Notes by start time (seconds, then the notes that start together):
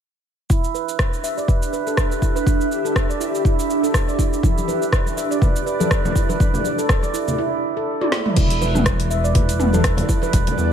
0.50 D4 E4 G4 E5, kick, cabasa
0.64 cabasa
0.74 B4, cabasa
0.89 cabasa
0.99 kick, cross-stick, cabasa
1.13 cabasa
1.24 E5, cabasa
1.38 D5, cabasa
1.48 B4, kick, cabasa
1.62 cabasa
1.73 B4, cabasa
1.87 A4, cabasa
1.97 B4, kick, cross-stick, cabasa
2.12 cabasa
2.22 E4, kick, cabasa
2.36 B4, cabasa
2.47 kick, cabasa
2.61 cabasa
2.72 cabasa
2.85 A4, cabasa
2.96 kick, cross-stick, cabasa
3.10 D5, cabasa
3.20 E4, cabasa
3.35 cabasa
3.45 E4, kick, cabasa
3.59 cabasa
3.70 cabasa
3.83 A4, cabasa
3.94 kick, cross-stick, cabasa
4.08 D5, cabasa
4.19 E4, kick, cabasa
4.33 cabasa
4.43 E4 D5, kick, high conga, cabasa
4.58 high conga, cabasa
4.68 B4, muted conga, cabasa
4.82 cabasa
4.93 kick, cross-stick, cabasa
5.06 muted conga, cabasa
5.17 E5, cabasa
5.31 D5, cabasa
5.42 B4, kick, muted conga, low conga, cabasa
5.56 cabasa
5.66 B4, cabasa
5.80 A4, muted conga, high conga, cabasa
5.91 kick, cross-stick, cabasa
6.05 high conga, low conga, cabasa
6.15 E4, kick, cabasa
6.29 B4, muted conga, high conga, cabasa
6.40 kick, high conga, cabasa
6.54 low conga, cabasa
6.64 muted conga, cabasa
6.78 A4, cabasa
6.89 kick, cross-stick, cabasa
7.03 D5, muted conga, cabasa
7.14 E4, cabasa
7.28 low conga, cabasa
7.38 E4
7.77 A4
8.01 D5, high tom
8.12 E4, snare
8.26 mid tom
8.36 E1 G3 E4 D5, kick, closed hi-hat, crash, high conga, cabasa
8.50 closed hi-hat, cabasa
8.61 B4, muted conga, cabasa
8.75 mid tom, high conga, cabasa
8.86 kick, cross-stick, closed hi-hat, cabasa
9.00 closed hi-hat, muted conga, cabasa
9.10 E5, cabasa
9.24 D5, cabasa
9.35 B4, kick, closed hi-hat, muted conga, low conga, cabasa
9.49 closed hi-hat, cabasa
9.60 B4, mid tom, cabasa
9.73 A4, muted conga, high conga, cabasa
9.84 kick, cross-stick, closed hi-hat, cabasa
9.97 closed hi-hat, high conga, low conga, cabasa
10.09 E4, kick, cabasa
10.22 B4, muted conga, high conga, cabasa
10.33 E1, kick, closed hi-hat, high conga, cabasa
10.47 closed hi-hat, high conga, low conga, cabasa
10.58 E2, muted conga, cabasa